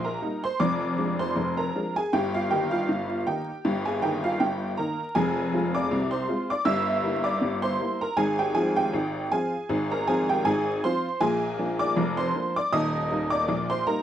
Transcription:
0.00 0.16 A#1 medium
0.00 0.16 A#2 medium
0.04 0.41 A#4 medium
0.04 0.43 A#5 medium
0.22 0.43 G3 medium
0.22 0.43 A#3 soft
0.22 0.43 D#4 medium
0.44 0.60 C5 medium
0.44 0.60 C6 loud
0.60 0.92 F1 medium
0.60 0.92 F2 medium
0.60 1.16 D5 medium
0.60 1.19 D6 loud
0.98 1.19 F3 soft
0.98 1.19 G#3 medium
0.98 1.19 D4 medium
1.19 1.55 C5 medium
1.19 1.57 C6 loud
1.35 1.68 F1 medium
1.35 1.68 F2 medium
1.57 1.93 A#4 medium
1.57 1.95 A#5 medium
1.75 1.95 F3 medium
1.75 1.96 G#3 soft
1.75 1.96 D4 medium
1.96 2.12 G#4 medium
1.96 2.12 G#5 loud
2.13 2.45 G1 medium
2.13 2.45 G2 medium
2.13 2.33 G4 medium
2.13 2.34 G5 loud
2.35 2.50 F4 medium
2.35 2.51 F5 medium
2.51 2.72 D#3 medium
2.51 2.72 A#3 medium
2.51 2.72 D#4 medium
2.51 2.71 G4 medium
2.51 2.72 G5 medium
2.71 3.23 F4 medium
2.71 3.26 F5 medium
2.89 3.21 G1 medium
2.89 3.21 G2 medium
3.27 3.48 D#3 soft
3.27 3.48 A#3 soft
3.27 3.48 D#4 medium
3.27 3.82 G4 medium
3.27 3.85 G5 medium
3.65 3.96 G1 medium
3.65 3.96 G2 medium
3.85 4.01 G#4 medium
3.85 4.02 G#5 medium
4.02 4.23 D#3 soft
4.02 4.23 A#3 medium
4.02 4.24 D#4 medium
4.02 4.22 G4 medium
4.02 4.23 G5 loud
4.24 4.40 F4 medium
4.24 4.40 F5 medium
4.40 4.72 G1 medium
4.40 4.72 G2 medium
4.40 4.75 G4 medium
4.40 4.78 G5 loud
4.77 4.99 D#3 soft
4.77 4.99 A#3 medium
4.77 5.00 D#4 medium
4.77 5.13 A#4 medium
4.77 5.15 A#5 medium
5.15 5.48 F1 medium
5.15 5.48 F2 loud
5.15 5.71 G#4 medium
5.15 5.74 G#5 loud
5.53 5.74 G#3 medium
5.53 5.74 C4 medium
5.53 5.75 F4 medium
5.75 6.10 D5 medium
5.75 6.12 D6 loud
5.91 6.23 C2 medium
5.91 6.23 C3 medium
6.11 6.47 C5 medium
6.11 6.49 C6 medium
6.28 6.49 G#3 medium
6.28 6.50 C4 medium
6.28 6.50 F4 medium
6.50 6.66 D5 medium
6.50 6.67 D6 loud
6.65 6.98 G1 loud
6.65 6.98 G2 loud
6.65 7.21 E5 medium
6.65 7.25 E6 loud
7.03 7.24 G3 medium
7.03 7.25 A#3 medium
7.03 7.25 E4 medium
7.24 7.60 D5 medium
7.24 7.63 D6 loud
7.42 7.74 G1 medium
7.42 7.74 G2 medium
7.62 7.99 C5 medium
7.62 8.01 C6 loud
7.80 8.01 G3 medium
7.80 8.01 A#3 soft
7.80 8.01 E4 medium
8.01 8.18 A#4 medium
8.01 8.18 A#5 loud
8.17 8.50 G#1 medium
8.17 8.50 G#2 medium
8.17 8.38 G#4 medium
8.17 8.39 G#5 loud
8.39 8.55 G4 medium
8.39 8.56 G5 loud
8.55 8.76 F3 medium
8.55 8.77 C4 medium
8.55 8.77 F4 medium
8.55 8.76 G#4 medium
8.55 8.76 G#5 loud
8.76 9.28 G4 medium
8.76 9.31 G5 loud
8.93 9.26 G#1 medium
8.93 9.26 G#2 medium
9.32 9.53 F3 soft
9.32 9.53 C4 medium
9.32 9.53 F4 medium
9.32 9.87 G#4 medium
9.32 9.91 G#5 loud
9.69 10.02 G#1 medium
9.69 10.02 G#2 loud
9.92 10.07 A#4 medium
9.92 10.08 A#5 medium
10.07 10.28 F3 medium
10.07 10.29 C4 medium
10.07 10.29 F4 medium
10.07 10.28 G#4 medium
10.07 10.28 G#5 loud
10.29 10.45 G4 medium
10.29 10.46 G5 loud
10.45 10.77 G#1 medium
10.45 10.77 G#2 medium
10.45 10.81 G#4 medium
10.45 10.83 G#5 loud
10.84 11.05 F3 soft
10.84 11.05 C4 medium
10.84 11.05 F4 medium
10.84 11.19 C5 medium
10.84 11.21 C6 loud
11.21 11.53 A#1 medium
11.21 11.53 A#2 loud
11.21 11.76 G#4 medium
11.21 11.80 G#5 loud
11.59 11.80 F3 medium
11.59 11.80 A#3 medium
11.59 11.80 D4 medium
11.79 12.15 D5 medium
11.79 12.18 D6 loud
11.97 12.29 F1 loud
11.97 12.29 F2 medium
12.17 12.53 C5 medium
12.17 12.55 C6 loud
12.34 12.55 F3 medium
12.34 12.56 A#3 medium
12.34 12.56 D4 medium
12.56 12.72 D5 medium
12.56 12.73 D6 loud
12.72 13.05 D#1 medium
12.72 13.05 D#2 loud
12.72 13.28 D#5 medium
12.72 13.31 D#6 loud
13.11 13.32 G3 medium
13.11 13.32 A#3 medium
13.11 13.32 D#4 medium
13.30 13.67 D5 medium
13.30 13.69 D6 loud
13.48 13.81 A#1 medium
13.48 13.80 A#2 medium
13.70 13.86 C5 medium
13.70 13.86 C6 loud
13.87 14.02 G3 medium
13.87 14.02 A#3 medium
13.87 14.02 D#4 medium
13.87 14.02 A#4 medium
13.87 14.02 A#5 loud

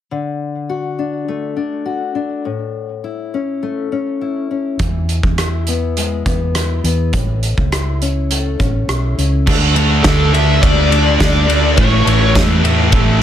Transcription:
0.11 1.57 D3 medium
0.69 1.84 F#4 medium
0.99 1.55 D4 soft
1.28 2.45 A3 medium
1.56 2.14 D4 medium
1.85 2.44 F#4 medium
2.15 2.45 D4 medium
2.45 3.91 A2 medium
3.04 4.21 E4 medium
3.34 3.91 C#4 medium
3.63 4.80 A3 medium
3.92 4.49 C#4 medium
4.21 5.38 E4 medium
4.51 4.80 C#4 medium
4.79 5.21 E2 medium
4.79 6.26 E3 medium
4.79 kick medium
4.79 closed hi-hat medium
5.09 closed hi-hat soft
5.23 6.22 E2 medium
5.23 kick medium
5.38 6.53 E4 medium
5.38 cross-stick medium
5.38 closed hi-hat medium
5.67 6.24 B3 medium
5.67 closed hi-hat soft
5.97 7.14 G#3 medium
5.97 closed hi-hat medium
6.26 6.81 E2 medium
6.26 6.84 B3 medium
6.26 kick medium
6.26 closed hi-hat soft
6.54 7.13 E4 medium
6.54 cross-stick loud
6.54 closed hi-hat medium
6.84 7.12 E2 medium
6.84 7.14 B3 medium
6.84 closed hi-hat medium
7.13 7.55 A1 medium
7.13 8.60 A2 medium
7.13 kick medium
7.13 closed hi-hat medium
7.43 closed hi-hat soft
7.57 8.56 C#2 medium
7.57 kick medium
7.72 8.87 E4 medium
7.72 cross-stick medium
7.72 closed hi-hat medium
8.02 8.58 C#4 medium
8.02 closed hi-hat soft
8.31 9.47 A3 medium
8.31 closed hi-hat medium
8.59 8.87 A1 medium
8.59 9.17 C#4 medium
8.59 kick medium
8.59 closed hi-hat soft
8.88 9.14 B1 medium
8.88 9.47 E4 medium
8.88 cross-stick loud
8.88 closed hi-hat medium
9.18 9.44 C#2 medium
9.18 9.47 C#4 medium
9.18 closed hi-hat soft
9.47 10.02 D2 loud
9.47 9.74 D3 loud
9.47 9.75 A3 medium
9.47 9.76 D4 loud
9.47 kick loud
9.47 crash loud
9.76 10.03 D3 medium
9.76 10.05 A3 medium
9.76 10.04 D4 loud
9.76 ride medium
10.03 10.60 D2 loud
10.03 10.32 D3 medium
10.03 10.33 A3 medium
10.03 10.33 D4 medium
10.03 10.34 A4 medium
10.03 kick loud
10.03 snare loud
10.03 ride loud
10.33 10.61 D3 loud
10.33 10.62 A3 medium
10.33 10.63 D4 loud
10.33 10.64 E5 loud
10.33 ride medium
10.62 11.18 D2 loud
10.62 10.89 D3 medium
10.62 10.89 A3 medium
10.62 10.91 D4 medium
10.62 11.77 D5 loud
10.62 kick loud
10.62 ride loud
10.90 11.18 D3 loud
10.90 11.18 A3 medium
10.90 11.19 D4 loud
10.90 ride medium
11.19 11.75 D2 medium
11.19 11.46 D3 medium
11.19 11.46 A3 medium
11.19 11.47 D4 medium
11.19 kick loud
11.19 snare loud
11.19 ride loud
11.47 11.75 D3 medium
11.47 11.76 A3 loud
11.47 11.76 D4 loud
11.47 ride medium
11.77 12.05 A1 loud
11.77 12.04 A2 medium
11.77 12.05 E3 loud
11.77 12.05 A3 loud
11.77 12.31 C#5 medium
11.77 kick loud
11.77 ride loud
12.05 12.34 A1 medium
12.05 12.34 A2 medium
12.05 12.35 E3 medium
12.05 12.35 A3 medium
12.05 ride medium
12.35 12.90 E2 loud
12.35 12.62 A2 medium
12.35 12.64 E3 loud
12.35 12.63 A3 loud
12.35 kick loud
12.35 snare loud
12.35 ride loud
12.63 12.91 A2 medium
12.63 12.93 E3 loud
12.63 12.93 A3 loud
12.63 ride medium
12.92 13.23 A1 medium
12.92 13.19 A2 medium
12.92 13.21 E3 medium
12.92 13.20 A3 loud
12.92 kick loud
12.92 ride medium

